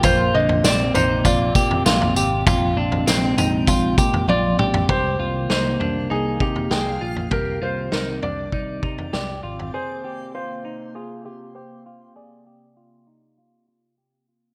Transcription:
<<
  \new Staff \with { instrumentName = "Felt piano" } { \time 4/4 \key bes \mixolydian \tempo 4 = 99 c''8 ees''8 d''8 c''8 d''2~ | d''2. d''4 | c''4 c''4 aes'8 g'8 aes'4 | bes'8 c''8 bes'8 d''4. d''4 |
c''4 c''4 aes'8 g'8 c''4 | d''2. r4 | }
  \new Staff \with { instrumentName = "Clean electric guitar" } { \time 4/4 \key bes \mixolydian f'8 d8 c'8 ees'8 f'8 g'8 f'8 g'8 | f'8 d'8 c'8 ees'8 f'8 g'8 f'8 g'8 | g'8 f'8 ees'8 d'8 ees'8 ees'8 g''8 f'8 | g'8 f'8 ees'8 d'8 ees'8 ees'8 g'8 f'8 |
aes'8 g'8 f'8 ees'8 f'8 f'8 g'8 f'8 | aes'8 g'8 f'8 ees'8 f'8 r8 g'8 f'8 | }
  \new Staff \with { instrumentName = "Ambient pad" } { \time 4/4 \key bes \mixolydian << { <c c'>1~ | <c c'>1 | <c ees>1~ | <c ees>1 |
c1~ | c1 | } \\ { bes1 | aes1 | bes1 | c'1 |
bes1~ | bes1 | } >> }
  \new Staff \with { instrumentName = "Picked electric bass" } { \clef bass \time 4/4 \key bes \mixolydian bes,,8 bes,,8 bes,,8 bes,,8 bes,,8 bes,8 bes,,8 aes,,8 | bes,,8 bes,,8 bes,,8 bes,,8 bes,,8 bes,8 bes,,8 bes,,8 | c,8 c,8 c,8 c,8 c,8 c8 c,8 bes,,8 | c,8 c,8 c,8 c,8 c,8 c8 c,8 aes,,8 |
r1 | r1 | }
  \new DrumStaff \with { instrumentName = "Drums" } \drummode { \time 4/4 <bd tamb tomfh>8. tomfh16 <sn tamb>8 <tamb tomfh>8 <bd tamb tomfh>8 <bd tamb>16 tomfh16 <sn tamb>16 tomfh16 tamb8 | <bd tamb tomfh>8. tomfh16 <sn tamb>8 <tamb tomfh>8 <bd tamb tomfh>8 <bd tamb>16 tomfh16 tommh8 toml16 tomfh16 | <bd tomfh>4 sn8 tomfh8 r8 bd16 tomfh16 sn8. tomfh16 | <bd tomfh>4 sn8 tomfh8 bd8 bd16 tomfh16 sn8. tomfh16 |
r4 r4 r4 r4 | r4 r4 r4 r4 | }
>>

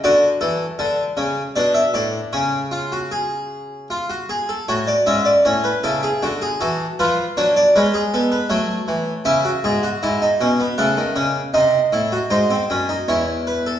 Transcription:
<<
  \new Staff \with { instrumentName = "Harpsichord" } { \time 3/4 \key fis \minor \tempo 4 = 78 << { d''8 a'8 a'8 cis''8 d''16 e''16 d''8 | cis''2~ cis''8 r8 | cis''16 d''16 e''16 d''16 cis''16 b'16 a'16 gis'16 fis'8 a'8 | b'8 cis''16 d''16 b'16 gis'16 a'16 b'16 cis''4 |
e''2 fis''4 | dis''4 bis'4 cis''8 b'16 a'16 | } \\ { fis'2 d'4 | cis'8 eis'16 fis'16 gis'4 eis'16 fis'16 gis'16 a'16 | fis'8 cis'8 cis'8 e'8 r16 gis'16 fis'8 | eis'8 d'8 cis'8 b8 a4 |
e'16 fis'16 gis'16 fis'16 e'16 dis'16 cis'16 b16 a8 cis'8 | dis'8 e'16 fis'16 dis'16 bis16 cis'16 dis'16 e'4 | } >> }
  \new Staff \with { instrumentName = "Harpsichord" } { \clef bass \time 3/4 \key fis \minor d8 e8 d8 cis8 b,8 a,8 | cis2~ cis8 r8 | a,8 gis,8 a,8 cis8 d8 e8 | eis8 fis8 gis4 fis8 e8 |
cis8 gis,8 gis,8 b,8 cis16 dis16 cis8 | bis,8 a,8 gis,8 fis,8 e,4 | }
>>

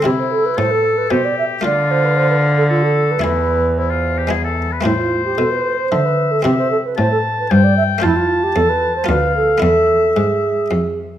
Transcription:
<<
  \new Staff \with { instrumentName = "Flute" } { \time 3/4 \key a \minor \tempo 4 = 113 g'16 c''16 a'16 b'16 c''16 a'8 b'16 c''16 d''16 e''8 | d''8 c''16 b'16 c''16 b'8 a'16 f'16 a'8 b'16 | b'4 c''4 r4 | e'16 f'8 g'16 a'16 b'8 c''8 b'8 a'16 |
g'16 c''16 a'16 b'16 c''16 a'8 b'16 c''16 d''16 e''8 | e'16 f'8 g'16 a'16 b'8 c''16 b'8 a'8 | a'4 gis'4. r8 | }
  \new Staff \with { instrumentName = "Oboe" } { \time 3/4 \key a \minor e'4 a'4 g'4 | f'2 a'4 | e'4 e'16 f'8 g'16 gis'16 a'8 b'16 | c''2 e''4 |
e''4 a''4 g''4 | a''2 f''4 | e''2~ e''8 r8 | }
  \new Staff \with { instrumentName = "Harpsichord" } { \time 3/4 \key a \minor <c' e'>2. | <a f'>2. | <a e'>2 <gis b e'>4 | <a c' e'>2. |
<c' e'>2. | <a c' f'>2 <b f'>4 | <b e'>2. | }
  \new Staff \with { instrumentName = "Harpsichord" } { \clef bass \time 3/4 \key a \minor c4 a,4 b,4 | d2. | e,2~ e,8 r8 | a,4 b,4 d4 |
c4 a,4 g,4 | f,4 e,4 d,4 | e,4 gis,4 f,4 | }
  \new Staff \with { instrumentName = "Cello" } { \clef bass \time 3/4 \key a \minor c4 a,4 b,4 | d2. | e,2~ e,8 r8 | a,4 b,4 d4 |
c4 a,4 g,4 | f,4 e,4 d,4 | e,4 gis,4 f,4 | }
>>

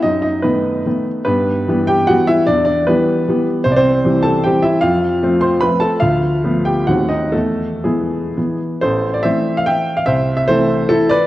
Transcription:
<<
  \new Staff \with { instrumentName = "Grand piano" } { \time 3/4 \key e \minor \tempo 4 = 146 <dis' dis''>8 <dis' dis''>8 <b b'>4. r8 | <b b'>4. <g' g''>8 <fis' fis''>8 <e' e''>8 | <d' d''>8 <d' d''>8 <b b'>4. r8 | \key a \minor \tuplet 3/2 { c''16 d''16 <c' c''>4~ } <c' c''>8 <a' a''>8 <g' g''>8 <e' e''>8 |
<f' f''>4. <c'' c'''>8 <b' b''>8 <a' a''>8 | <f' f''>4. <g' g''>8 <fis' fis''>8 <dis' dis''>8 | <a a'>4 <gis gis'>4. r8 | <a' c''>8. d''16 <c'' e''>8. f''16 <e'' g''>8. f''16 |
<c'' e''>8. e''16 <a' c''>4 <e' a'>8 <b' d''>8 | }
  \new Staff \with { instrumentName = "Grand piano" } { \clef bass \time 3/4 \key e \minor fis,4 <dis a>4 <dis a b>4 | g,4 <e g b>4 <e g b>4 | e,4 <e g>4 <e g b>4 | \key a \minor c,4 <e g c'>4 <e g c'>4 |
f,4 <f a c'>4 <f a c'>4 | d,4 <f a b>4 <dis, dis a bis>4 | e,4 <e b>4 <e b>4 | a,,4 <e a c'>2 |
c,4 <e a c'>2 | }
>>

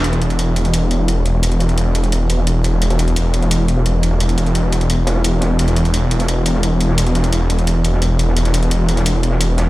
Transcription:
<<
  \new Staff \with { instrumentName = "Detuned saw bass" } { \clef bass \time 4/4 \key c \major \tempo 4 = 173 e,,1~ | e,,1~ | e,,1~ | e,,1 |
e,,1~ | e,,1~ | e,,1 | }
  \new DrumStaff \with { instrumentName = "Drums" } \drummode { \time 4/4 hh16 <hh sn>16 hh16 hh16 hh8 hh16 <hh sn>16 hh8 hh16 sn16 hh8 hh16 sn16 | hh16 hh16 <hh hho sn>16 hh16 hh8 hh16 hh16 hh8 hh16 sn16 hh8 hh16 sn16 | hh16 <hh sn>16 hh16 hh16 hh8 hh16 <hh sn>16 hh8 hh16 sn16 hh16 hh16 hh16 sn16 | hh16 hh16 <hh hho sn>16 hh16 hh8 hh16 hh16 hh8 <hh sn>16 <hh sn>16 hh8 <hh sn>8 |
hh16 <hh sn>16 hh16 hh16 hh8 hh16 <hh sn>16 hh8 hh16 sn16 hh16 hh16 hh16 sn16 | hh16 hh16 <hh hho sn>16 hh16 hh8 hh16 hh16 hh8 hh16 sn16 hh8 hh16 sn16 | hh16 <hh sn>16 hh16 hh16 hh8 hh16 <hh sn>16 hh8 hh16 sn16 hh16 hh16 <hh sn>8 | }
>>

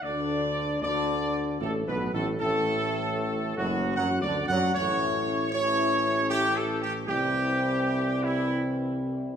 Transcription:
<<
  \new Staff \with { instrumentName = "Trumpet section" } { \time 3/4 \key d \major \tempo 4 = 77 d''4 d''4 \tuplet 3/2 { a'8 b'8 a'8 } | a'4. fis'8 \tuplet 3/2 { fis''8 d''8 fis''8 } | cis''4 cis''4 \tuplet 3/2 { g'8 a'8 g'8 } | g'4. e'8 r4 | }
  \new Staff \with { instrumentName = "French horn section" } { \time 3/4 \key d \major d'4 d'4 \tuplet 3/2 { a8 b8 a8 } | a4. fis8 \tuplet 3/2 { fis'8 d'8 fis'8 } | <cis' e'>4 <cis' e'>2 | <c' e'>2. | }
  \new Staff \with { instrumentName = "Trombone section" } { \clef bass \time 3/4 \key d \major d4 d4 \tuplet 3/2 { a,8 b,8 a,8 } | a,4. fis,8 \tuplet 3/2 { fis8 d8 fis8 } | <e a>4 <e a>2 | <e g>2. | }
  \new Staff \with { instrumentName = "Tuba" } { \clef bass \time 3/4 \key d \major d,4 d,4 \tuplet 3/2 { a,,8 b,,8 a,,8 } | a,,4. fis,,8 \tuplet 3/2 { fis,8 d,8 fis,8 } | a,,2. | c,2. | }
>>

